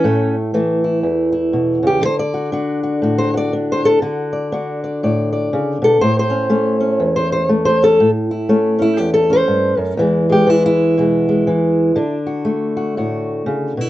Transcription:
0.00 0.34 C#4 medium
0.00 0.83 E4 soft
0.04 1.03 A2 medium
0.04 0.54 A3 soft
0.54 2.00 E3 medium
0.54 2.52 A3 soft
0.84 1.31 E4 soft
1.03 2.03 E2 medium
1.32 1.86 E4 soft
1.53 1.82 B2 medium
1.83 2.03 C#3 medium
1.87 2.03 G4 medium
2.01 4.00 D3 medium
2.05 2.19 C5 loud
2.19 3.18 D5 medium
2.34 2.53 F#4 soft
2.52 3.51 D4 medium
2.52 2.83 F#4 soft
2.83 3.03 F#4 soft
3.02 4.01 A2 medium
3.02 3.32 F#4 soft
3.18 3.35 C5 medium
3.34 3.85 F#4 soft
3.34 3.53 D5 medium
3.53 4.00 D4 medium
3.72 3.87 C5 medium
3.85 4.01 A4 medium
4.02 6.00 D3 medium
4.02 4.51 F#4 medium
4.33 4.82 D5 soft
4.52 5.98 D4 medium
4.52 5.84 F#4 soft
4.84 5.02 D5 soft
5.03 5.52 A2 medium
5.03 5.31 D5 soft
5.33 5.99 D5 soft
5.53 5.81 C#3 medium
5.82 6.01 B2 medium
5.82 6.00 A4 medium
6.01 7.00 A2 medium
6.01 6.17 C5 loud
6.19 7.15 C5 medium
6.30 6.50 C#4 soft
6.50 7.48 A3 medium
6.50 6.80 C#4 soft
6.80 7.79 C#4 soft
7.00 7.99 E2 medium
7.16 7.31 C5 medium
7.32 7.49 C5 medium
7.49 7.96 A3 medium
7.65 7.82 C5 medium
7.82 7.98 C#4 soft
7.82 8.09 A4 loud
8.00 8.99 A2 medium
8.31 8.81 E4 soft
8.49 9.95 A3 medium
8.49 8.77 C#4 soft
8.79 9.28 C#4 soft
8.79 8.98 E4 medium
8.97 9.47 E2 medium
8.97 9.13 G4 medium
9.14 9.31 A4 medium
9.30 9.96 C#4 soft
9.30 9.79 C5 loud
9.48 9.77 G2 medium
9.77 9.97 F#2 medium
9.77 9.98 A#4 loud
9.97 11.96 E2 medium
9.97 10.46 E3 medium
9.97 10.28 G#3 soft
10.30 10.98 G#3 soft
10.30 10.50 G4 medium
10.47 11.46 E3 medium
10.47 10.65 E4 medium
10.66 12.14 E4 medium
10.98 11.47 B2 medium
10.98 11.28 G#3 soft
11.29 11.95 G#3 soft
11.47 11.94 E3 medium
11.96 13.90 D3 medium
11.96 13.90 D4 medium
12.27 12.75 F#4 soft
12.45 13.90 A3 medium
12.77 12.96 F#4 soft
12.97 13.46 A2 medium
12.97 13.81 F#4 soft
13.46 13.75 C#3 medium
13.77 13.90 B2 medium
13.77 13.90 E4 medium

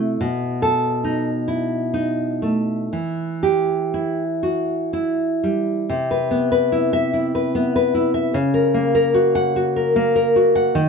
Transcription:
0.00 0.16 C3 medium
0.00 0.21 A3 medium
0.00 0.20 E4 medium
0.00 0.20 F#4 medium
0.21 2.89 B2 medium
0.62 1.29 A4 medium
1.04 1.92 D#4 medium
1.48 2.93 E4 soft
1.94 2.93 D#4 medium
2.42 2.93 A3 soft
2.93 5.84 E3 medium
3.43 4.22 G4 medium
3.94 4.92 E4 soft
4.43 5.88 F#4 soft
4.93 5.88 E4 medium
5.43 5.88 G3 soft
5.89 8.31 C3 medium
6.11 6.50 B4 medium
6.31 7.54 B3 medium
6.52 6.93 B4 medium
6.72 7.12 E4 medium
6.93 7.25 E5 medium
7.14 7.93 E4 medium
7.35 7.74 B4 medium
7.55 8.35 B3 medium
7.76 8.14 B4 medium
7.94 8.34 E4 medium
8.14 8.34 E5 medium
8.34 10.71 C#3 medium
8.54 8.94 A#4 medium
8.74 9.95 A#3 medium
8.95 9.75 A#4 medium
9.14 9.55 F#4 medium
9.35 9.68 F#5 medium
9.56 10.35 F#4 medium
9.76 10.14 A#4 medium
9.96 10.75 A#3 medium
10.16 10.75 A#4 medium
10.36 10.75 F#4 medium
10.56 10.75 F#5 medium
10.75 10.89 D#3 medium

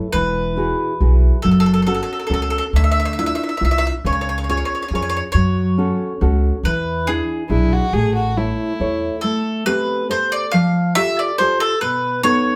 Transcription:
0.13 0.70 E1 medium
0.13 0.56 E3 soft
0.13 1.42 B4 medium
0.57 0.92 E4 soft
0.57 0.92 F#4 soft
0.57 0.93 G#4 soft
1.00 1.29 B1 medium
1.00 1.36 E4 soft
1.00 1.36 F#4 soft
1.00 1.36 G#4 soft
1.42 2.01 F#1 medium
1.42 1.86 F#3 soft
1.42 1.50 A4 medium
1.51 1.59 A4 soft
1.60 1.65 A4 medium
1.66 1.72 A4 medium
1.74 1.80 A4 medium
1.82 1.85 A4 soft
1.87 2.22 C#4 soft
1.87 2.22 F#4 soft
1.87 1.93 A4 medium
1.87 2.22 A4 medium
1.95 2.01 A4 medium
2.03 2.11 A4 medium
2.13 2.18 A4 soft
2.20 2.25 A4 soft
2.27 2.58 C#2 medium
2.27 2.65 C#4 soft
2.27 2.65 F#4 soft
2.27 2.32 A4 medium
2.31 2.65 A4 soft
2.31 2.40 A4 medium
2.42 2.49 A4 medium
2.50 2.56 A4 medium
2.58 2.64 A4 medium
2.73 3.30 D2 medium
2.73 3.16 D3 medium
2.73 2.82 E5 medium
2.84 2.90 E5 medium
2.92 2.98 E5 medium
3.00 3.04 E5 medium
3.05 3.11 E5 medium
3.13 3.18 E5 medium
3.18 3.53 D4 soft
3.18 3.53 E4 soft
3.18 3.53 F4 soft
3.18 3.25 E5 medium
3.26 3.34 E5 medium
3.35 3.42 E5 medium
3.43 3.48 E5 soft
3.49 3.55 E5 soft
3.57 3.96 D4 soft
3.57 3.96 E4 soft
3.57 3.96 F4 soft
3.57 3.63 E5 soft
3.61 3.90 C2 medium
3.61 3.70 E5 medium
3.71 3.77 E5 medium
3.78 3.86 E5 medium
3.87 3.93 E5 medium
4.05 4.61 C#2 medium
4.05 4.47 C#3 medium
4.05 4.11 C#5 medium
4.13 4.20 C#5 medium
4.21 4.28 C#5 medium
4.29 4.35 C#5 medium
4.38 4.43 C#5 medium
4.44 4.48 C#5 soft
4.49 4.83 C#4 soft
4.49 4.84 F4 soft
4.49 4.84 G#4 soft
4.49 4.56 C#5 medium
4.57 4.64 C#5 soft
4.65 4.72 C#5 medium
4.75 4.80 C#5 soft
4.82 4.87 C#5 soft
4.88 5.19 F2 medium
4.88 4.94 C#5 soft
4.93 5.27 C#4 soft
4.93 5.27 F4 soft
4.93 5.27 G#4 soft
4.93 5.01 C#5 medium
5.02 5.08 C#5 medium
5.10 5.15 C#5 medium
5.17 5.23 C#5 medium
5.32 5.91 F#2 medium
5.32 5.77 F#3 medium
5.32 6.65 C#5 medium
5.78 6.13 C#4 soft
5.78 6.13 F#4 soft
5.78 6.13 A4 soft
6.21 6.49 C#2 medium
6.21 6.56 C#4 soft
6.21 6.56 F#4 soft
6.21 6.56 A4 soft
6.63 7.20 E2 medium
6.63 7.07 E3 medium
6.63 7.09 B4 medium
7.07 7.42 D4 soft
7.07 7.42 E4 soft
7.07 8.76 G#4 medium
7.07 7.43 G#4 medium
7.49 7.78 B1 medium
7.49 7.85 D4 soft
7.49 7.74 E4 medium
7.49 7.85 E4 soft
7.49 7.85 G#4 soft
7.73 7.94 F#4 medium
7.93 8.49 A1 medium
7.93 8.36 A3 medium
7.93 8.15 G#4 medium
8.15 8.38 F#4 medium
8.37 8.72 A3 soft
8.37 9.24 E4 medium
8.37 8.72 E4 soft
8.37 8.72 C#5 medium
8.80 9.08 E2 medium
8.80 9.15 E4 soft
8.80 9.15 A4 soft
8.80 9.16 C#5 soft
9.21 9.66 A3 medium
9.21 9.63 A4 medium
9.66 10.02 C4 soft
9.66 10.01 G4 soft
9.66 10.01 A4 soft
9.66 10.06 B4 loud
10.09 10.44 G4 soft
10.09 10.44 A4 soft
10.09 10.44 C5 soft
10.09 10.32 C5 medium
10.32 10.51 D5 medium
10.52 10.95 F3 medium
10.52 10.95 F5 medium
10.95 11.31 F4 soft
10.95 11.31 G4 soft
10.95 11.31 A4 medium
10.95 11.17 E5 loud
11.19 11.38 D5 medium
11.38 11.74 F4 soft
11.38 11.74 G4 soft
11.38 11.74 A4 medium
11.38 11.60 C5 medium
11.60 11.79 A4 medium
11.81 12.23 B2 soft
11.81 12.21 B4 medium
12.23 12.56 B3 medium
12.23 12.56 D#4 soft
12.23 12.56 A4 medium
12.23 12.56 C#5 loud

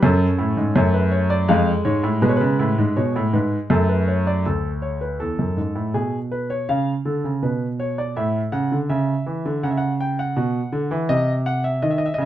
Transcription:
0.02 0.25 F#2 medium
0.02 0.73 C#4 medium
0.02 0.73 A4 medium
0.39 0.56 A2 medium
0.57 0.75 G#2 medium
0.75 1.46 F#2 medium
0.75 1.46 A3 medium
0.75 0.93 C#5 medium
0.94 1.11 B4 medium
1.12 1.29 C#5 medium
1.30 1.48 D5 medium
1.48 1.71 F2 loud
1.48 2.20 G#3 medium
1.48 1.71 F5 medium
1.85 2.03 G#2 medium
1.85 2.08 C#5 medium
2.03 2.22 A2 medium
2.22 2.40 B2 loud
2.22 3.67 G#3 medium
2.22 2.29 B4 medium
2.29 2.36 C#5 medium
2.37 2.95 B4 medium
2.41 2.59 C#3 medium
2.59 2.78 A2 medium
2.78 2.96 G#2 medium
2.96 3.15 B2 medium
2.96 3.20 C#5 medium
3.16 3.34 A2 medium
3.33 3.56 G#2 medium
3.33 3.56 B4 medium
3.70 4.43 F#2 medium
3.70 4.43 A3 medium
3.70 3.89 A4 medium
3.89 4.07 B4 medium
4.08 4.26 C#5 medium
4.27 4.45 D5 medium
4.46 5.18 D2 medium
4.46 4.69 A4 medium
4.82 5.01 C#5 medium
5.01 5.20 B4 medium
5.20 5.38 E2 medium
5.20 5.92 A4 medium
5.39 5.57 F#2 medium
5.57 5.75 G#2 medium
5.75 5.94 A2 medium
5.94 6.66 B2 medium
5.94 6.18 G#4 medium
6.32 6.50 B4 medium
6.50 6.68 C#5 medium
6.69 6.92 C#3 medium
6.69 6.92 F5 medium
7.05 7.24 D3 medium
7.05 7.29 A4 medium
7.24 7.42 C#3 medium
7.43 8.14 B2 medium
7.43 7.66 B4 medium
7.80 7.98 C#5 medium
7.98 8.16 D5 medium
8.16 8.40 A2 medium
8.16 8.39 E5 medium
8.52 8.71 C#3 medium
8.52 8.76 F#5 medium
8.72 8.90 D3 medium
8.89 9.13 C#3 medium
8.89 9.61 E5 medium
9.26 9.45 E3 medium
9.46 9.63 D3 medium
9.63 10.35 C#3 medium
9.63 9.68 F#5 medium
9.70 9.77 E5 medium
9.77 9.92 F#5 medium
10.00 10.18 G5 medium
10.19 11.07 F#5 medium
10.36 10.59 B2 medium
10.72 10.91 D3 medium
10.91 11.09 E3 medium
11.09 11.80 C3 medium
11.09 11.32 D#5 medium
11.46 11.64 F#5 medium
11.64 11.82 E5 medium
11.82 12.05 D#3 medium
11.82 11.90 D#5 medium
11.90 11.98 E5 medium
11.98 12.06 D#5 medium
12.06 12.14 E5 medium
12.14 12.22 D#5 medium
12.18 12.25 C#3 medium
12.18 12.25 E5 medium

